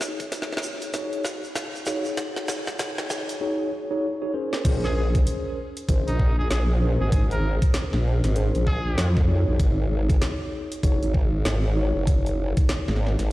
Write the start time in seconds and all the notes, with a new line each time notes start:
Already playing: D#4 F#4 G#4 C#5
0.01 snare, shaker
0.20 kick, closed hi-hat, shaker
0.32 snare, closed hi-hat, shaker
0.42 snare
0.53 snare
0.57 snare
0.63 shaker
0.82 closed hi-hat, shaker
0.94 D#4 F#4 G#4 C#5, kick, snare, closed hi-hat, shaker
1.13 closed hi-hat
1.25 kick, snare, shaker
1.44 shaker
1.56 snare, closed hi-hat, shaker
1.75 shaker
1.86 D#4 F#4 G#4 C#5, snare, shaker
2.05 shaker
2.17 kick, snare, closed hi-hat, shaker
2.36 snare
2.48 snare, shaker
2.67 kick, snare, shaker
2.79 snare, closed hi-hat, shaker
2.98 snare, closed hi-hat
3.10 snare, shaker
3.29 closed hi-hat, shaker
3.41 D#4 F#4 G#4 C#5
3.91 D#4 F#4 G#4 C#5
4.22 D#4 F#4 G#4 C#5
4.34 C#4 G#4 A#4 C5
4.53 snare
4.65 A#1 C#4 G#4 A#4 C5, kick, closed hi-hat, crash
4.84 G#4, snare
4.96 G#4
5.15 kick, closed hi-hat
5.27 closed hi-hat
5.77 closed hi-hat
5.89 G#1 C#4 G#4 A#4 C5, kick, closed hi-hat
6.08 A#1 D#4, closed hi-hat
6.20 kick
6.38 G#4
6.50 A#1 G#4, snare, closed hi-hat
6.81 C#4 G#4 A#4 C5
7.00 G#1 G#4
7.12 G#4, kick, closed hi-hat
7.31 A#4, closed hi-hat
7.62 kick, closed hi-hat
7.74 snare, closed hi-hat
7.93 A#1, snare
8.24 G#1, snare, closed hi-hat
8.36 C#4 G#4 A#4 C5, closed hi-hat
8.55 A#1, closed hi-hat
8.67 G#4, kick
8.98 F2, snare, closed hi-hat
9.17 kick, snare
9.29 D#4 F#4 G#4 C#5
9.47 A#1
9.60 G#1, kick, closed hi-hat
10.10 kick, closed hi-hat
10.22 snare, closed hi-hat
10.72 closed hi-hat
10.83 F#1 D#4 F#4 G#4 C#5, kick, closed hi-hat
11.02 G#1, closed hi-hat
11.14 kick
11.45 G#1, snare, closed hi-hat
11.76 D#4 F#4 G#4 C#5
11.95 F#1
12.07 kick, closed hi-hat
12.26 closed hi-hat
12.57 kick, closed hi-hat
12.69 snare, closed hi-hat
12.88 G#1, snare
12.96 snare
13.06 snare
13.19 G#1, snare, closed hi-hat